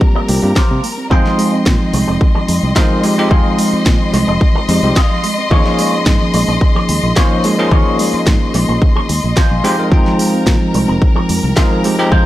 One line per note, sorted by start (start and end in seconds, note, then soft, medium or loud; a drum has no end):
0.00 0.04 F3 loud
0.00 0.26 G3 medium
0.00 0.26 A#3 medium
0.00 0.26 C4 medium
0.00 0.26 F4 medium
0.00 0.27 G4 medium
0.00 1.12 A#4 medium
0.00 1.12 A#5 medium
0.00 muted clean electric guitar stroke soft
0.00 kick loud
0.15 0.21 G3 medium
0.15 muted clean electric guitar stroke loud
0.28 0.38 C2 medium
0.28 0.39 G3 medium
0.28 0.39 A#3 medium
0.28 0.34 A#3 medium
0.28 0.40 C4 medium
0.28 0.40 F4 medium
0.28 0.40 G4 medium
0.28 muted clean electric guitar stroke soft
0.28 open hi-hat loud
0.42 0.52 G2 medium
0.42 0.52 G3 medium
0.42 0.52 A#3 medium
0.42 0.52 C4 medium
0.42 0.48 C4 medium
0.42 0.53 F4 medium
0.42 0.53 G4 medium
0.55 0.62 F3 loud
0.55 0.83 F4 medium
0.55 0.84 G4 medium
0.55 0.84 A#4 medium
0.55 0.84 C5 medium
0.55 kick loud
0.55 snare loud
0.70 0.79 C3 medium
0.70 0.73 G3 medium
0.83 0.92 A#3 loud
0.83 open hi-hat medium
0.97 1.06 C4 medium
1.10 1.20 F2 loud
1.10 1.14 D#3 medium
1.10 2.73 F3 medium
1.10 2.73 G#3 medium
1.10 2.73 C4 medium
1.10 1.53 D#4 loud
1.10 2.74 D#4 medium
1.10 1.53 F4 medium
1.10 1.53 G#4 loud
1.10 1.53 C5 loud
1.10 9.93 D#5 medium
1.10 2.74 G5 loud
1.10 9.93 C6 medium
1.10 kick loud
1.25 1.31 F3 medium
1.25 snare soft
1.38 1.44 G#3 loud
1.38 open hi-hat loud
1.53 1.58 C4 medium
1.66 1.75 A#2 medium
1.66 1.72 D#3 loud
1.66 kick loud
1.66 snare loud
1.80 1.84 F3 medium
1.93 2.03 C2 medium
1.93 2.02 G#3 medium
1.93 muted clean electric guitar stroke medium
1.93 open hi-hat loud
2.08 2.17 F1 medium
2.08 2.16 C4 loud
2.08 muted clean electric guitar stroke medium
2.21 2.25 D#3 loud
2.21 muted clean electric guitar stroke soft
2.21 kick loud
2.35 2.41 F3 medium
2.35 muted clean electric guitar stroke loud
2.48 2.58 F2 medium
2.48 2.54 G#3 medium
2.48 muted clean electric guitar stroke soft
2.48 open hi-hat loud
2.63 2.72 C2 loud
2.63 2.68 C4 medium
2.75 2.82 D#3 loud
2.75 3.00 F3 medium
2.75 3.01 G#3 medium
2.75 3.01 C4 medium
2.75 3.03 D#4 medium
2.75 3.01 D#4 medium
2.75 3.04 F4 medium
2.75 3.04 G#4 medium
2.75 3.01 A#4 loud
2.75 3.04 C5 medium
2.75 kick loud
2.75 snare loud
2.90 2.94 F3 medium
3.03 3.15 F3 medium
3.03 3.12 G#3 loud
3.03 3.15 G#3 medium
3.03 3.15 C4 medium
3.03 3.15 D#4 medium
3.03 3.15 G4 medium
3.03 open hi-hat medium
3.18 3.28 F3 loud
3.18 3.28 G#3 medium
3.18 3.26 C4 medium
3.18 3.28 C4 medium
3.18 3.29 D#4 medium
3.18 3.29 G4 loud
3.30 3.40 F2 loud
3.30 3.35 D#3 medium
3.30 4.66 F3 medium
3.30 4.66 G#3 medium
3.30 4.67 C4 medium
3.30 3.73 D#4 loud
3.30 3.73 F4 medium
3.30 3.73 G#4 loud
3.30 3.73 C5 loud
3.30 4.67 G5 medium
3.30 kick loud
3.45 3.51 F3 medium
3.58 3.64 G#3 loud
3.58 open hi-hat loud
3.73 3.78 C4 medium
3.73 muted fingered electric bass stroke soft
3.86 3.95 A#2 medium
3.86 3.92 D#3 loud
3.86 kick loud
3.86 snare loud
4.00 4.04 F3 medium
4.13 4.23 C2 medium
4.13 4.22 G#3 medium
4.13 muted clean electric guitar stroke medium
4.13 snare soft
4.13 open hi-hat medium
4.28 4.37 F1 medium
4.28 4.36 C4 loud
4.28 muted clean electric guitar stroke medium
4.41 4.45 D#3 loud
4.41 muted clean electric guitar stroke soft
4.41 kick loud
4.55 4.61 F3 medium
4.55 muted clean electric guitar stroke loud
4.69 4.78 F2 medium
4.69 4.80 F3 medium
4.69 4.75 G#3 medium
4.69 4.80 G#3 medium
4.69 4.80 C4 medium
4.69 4.80 D#4 medium
4.69 4.80 G4 medium
4.69 muted clean electric guitar stroke soft
4.69 open hi-hat loud
4.83 4.92 C2 loud
4.83 4.93 F3 medium
4.83 4.93 G#3 medium
4.83 4.89 C4 medium
4.83 4.93 C4 medium
4.83 4.93 D#4 medium
4.83 4.93 G4 medium
4.96 5.02 D#3 loud
4.96 5.24 D#4 medium
4.96 5.24 F4 medium
4.96 5.24 G#4 medium
4.96 5.24 D#5 medium
4.96 kick loud
4.96 snare loud
5.11 5.14 F3 medium
5.24 5.33 G#3 loud
5.24 open hi-hat loud
5.38 5.46 C4 medium
5.51 5.61 D#2 loud
5.51 5.55 D#3 medium
5.51 7.13 F3 medium
5.51 7.13 A#3 medium
5.51 7.14 C#4 medium
5.51 5.93 D#4 loud
5.51 7.14 D#4 medium
5.51 5.93 F4 loud
5.51 5.93 G#4 loud
5.51 7.14 G#4 loud
5.51 5.94 C#5 loud
5.51 kick loud
5.66 5.71 F3 medium
5.66 snare soft
5.79 5.85 G#3 loud
5.79 open hi-hat loud
5.93 5.99 A#3 medium
6.06 6.16 G#2 medium
6.06 6.12 D#3 loud
6.06 kick loud
6.06 snare loud
6.21 6.24 F3 medium
6.34 6.43 A#1 medium
6.34 6.43 G#3 medium
6.34 muted clean electric guitar stroke medium
6.34 open hi-hat loud
6.48 6.57 A#1 medium
6.48 6.56 A#3 medium
6.48 muted clean electric guitar stroke medium
6.61 6.65 D#3 loud
6.61 muted clean electric guitar stroke soft
6.61 kick loud
6.75 6.81 F3 medium
6.75 muted clean electric guitar stroke loud
6.89 6.98 D#2 medium
6.89 6.95 G#3 medium
6.89 muted clean electric guitar stroke soft
6.89 open hi-hat loud
7.03 7.12 A#1 medium
7.03 7.09 A#3 medium
7.16 7.22 D#3 loud
7.16 7.41 F3 medium
7.16 7.41 A#3 medium
7.16 7.41 C#4 medium
7.16 7.44 D#4 medium
7.16 7.41 D#4 medium
7.16 7.44 F4 medium
7.16 7.44 G#4 medium
7.16 7.42 C5 loud
7.16 7.44 C#5 medium
7.16 kick loud
7.16 snare loud
7.31 7.34 F3 medium
7.44 7.55 F3 medium
7.44 7.53 G#3 loud
7.44 7.55 A#3 medium
7.44 7.55 C#4 medium
7.44 7.55 D#4 medium
7.44 7.56 G#4 medium
7.44 open hi-hat loud
7.58 7.69 F3 loud
7.58 7.66 A#3 medium
7.58 7.69 A#3 medium
7.58 7.69 C#4 medium
7.58 7.69 D#4 loud
7.58 7.69 G#4 loud
7.71 7.81 D#2 loud
7.71 7.75 D#3 medium
7.71 9.06 F3 medium
7.71 8.14 D#4 loud
7.71 8.14 F4 loud
7.71 8.14 G#4 loud
7.71 8.14 C#5 loud
7.71 kick loud
7.86 7.91 F3 medium
7.99 8.05 G#3 loud
7.99 open hi-hat loud
8.13 8.19 A#3 medium
8.13 muted fingered electric bass stroke soft
8.26 8.36 G#2 medium
8.26 8.32 D#3 loud
8.26 kick loud
8.26 snare loud
8.41 8.44 F3 medium
8.54 8.64 A#1 medium
8.54 8.63 G#3 medium
8.54 muted clean electric guitar stroke medium
8.54 snare soft
8.54 open hi-hat loud
8.68 8.77 A#1 medium
8.68 8.76 A#3 loud
8.68 muted clean electric guitar stroke medium
8.81 8.85 D#3 medium
8.81 muted clean electric guitar stroke soft
8.81 kick loud
8.96 9.01 F3 medium
8.96 muted clean electric guitar stroke loud
9.09 9.19 D#2 medium
9.09 9.15 G#3 medium
9.09 muted clean electric guitar stroke soft
9.09 open hi-hat loud
9.23 9.32 A#1 medium
9.23 9.29 A#3 medium
9.36 9.42 D#3 loud
9.36 9.63 D#4 medium
9.36 9.63 F4 medium
9.36 9.64 G#4 medium
9.36 9.64 C5 medium
9.36 kick loud
9.36 snare loud
9.50 9.60 A#1 medium
9.50 9.54 F3 medium
9.63 9.75 F3 loud
9.63 9.73 G#3 loud
9.63 9.75 G#3 medium
9.63 9.75 C4 medium
9.63 10.53 D#4 loud
9.63 9.75 D#4 medium
9.63 10.53 F4 medium
9.63 9.75 G4 loud
9.63 10.53 G#4 medium
9.63 10.53 C5 medium
9.63 open hi-hat loud
9.78 9.89 F3 medium
9.78 9.89 G#3 medium
9.78 9.86 C4 medium
9.78 9.89 C4 medium
9.78 9.89 D#4 medium
9.78 9.89 A#4 medium
9.91 10.01 F2 loud
9.91 9.95 D#3 medium
9.91 11.53 F3 medium
9.91 11.54 G#3 medium
9.91 11.54 C4 medium
9.91 11.54 D#4 medium
9.91 12.26 A#4 medium
9.91 11.55 G5 loud
9.91 12.26 A#5 medium
9.91 kick loud
10.05 10.11 F3 medium
10.05 snare soft
10.18 10.25 G#3 loud
10.18 open hi-hat loud
10.33 10.39 C4 medium
10.46 10.56 A#2 medium
10.46 10.52 D#3 loud
10.46 kick loud
10.46 snare loud
10.61 10.64 F3 medium
10.74 10.84 C2 medium
10.74 10.83 G#3 medium
10.74 muted clean electric guitar stroke medium
10.74 open hi-hat medium
10.88 10.97 F1 medium
10.88 10.96 C4 loud
10.88 muted clean electric guitar stroke medium
11.01 11.05 D#3 loud
11.01 muted clean electric guitar stroke soft
11.01 kick loud
11.15 11.21 F3 medium
11.15 muted clean electric guitar stroke loud
11.29 11.39 F2 medium
11.29 11.35 G#3 medium
11.29 muted clean electric guitar stroke soft
11.29 open hi-hat loud
11.43 11.52 C2 loud
11.43 11.49 C4 medium
11.56 11.63 D#3 loud
11.56 11.81 F3 medium
11.56 11.81 G#3 medium
11.56 11.81 C4 medium
11.56 11.84 D#4 medium
11.56 11.82 D#4 medium
11.56 11.84 F4 medium
11.56 11.84 G#4 medium
11.56 11.82 A#4 loud
11.56 11.85 C5 medium
11.56 kick loud
11.56 snare loud
11.71 11.74 F3 medium
11.84 11.95 F3 medium
11.84 11.93 G#3 loud
11.84 11.95 G#3 medium
11.84 11.96 C4 medium
11.84 11.96 D#4 medium
11.84 11.96 G4 medium
11.84 open hi-hat loud
11.98 12.09 F3 loud
11.98 12.09 G#3 medium
11.98 12.06 C4 medium
11.98 12.09 C4 medium
11.98 12.09 D#4 medium
11.98 12.09 G4 loud
12.11 12.21 F2 loud
12.11 12.15 D#3 medium
12.11 12.26 F3 medium
12.11 12.26 G#3 medium
12.11 12.26 D#4 loud
12.11 12.26 F4 loud
12.11 12.26 G#4 loud
12.11 12.26 C5 loud
12.11 12.26 G5 medium
12.11 kick loud